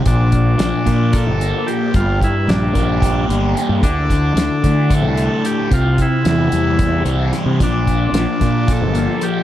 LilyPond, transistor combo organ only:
\new Staff \with { instrumentName = "Transistor combo organ" } { \time 7/8 \key g \dorian \tempo 4 = 111 d'2 a'4 g'8 | f'8 e'8 d'4. r4 | d'2 a'4 g'8 | f'8 e'8 e'4. r4 |
d'2 a'4 g'8 | }